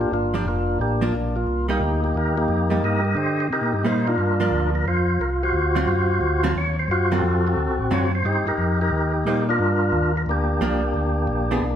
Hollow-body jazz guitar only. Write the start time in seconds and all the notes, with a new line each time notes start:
0.34 F3 A#3 D4
1.01 F3 A#3 D4
1.69 G3 A#3 D#4
2.70 G3 A#3 D#4
3.85 G3 A#3 D#4
4.40 F3 A#3 D4
5.75 D3 F#3 C4 F4
6.43 D3 F#3 C4 F4
7.12 D3 F#3 C4 F4
7.91 D3 F#3 C4 F4
9.27 G3 A#3 D#4
10.61 F3 A#3 D4
11.51 E3 B3 D4 G#4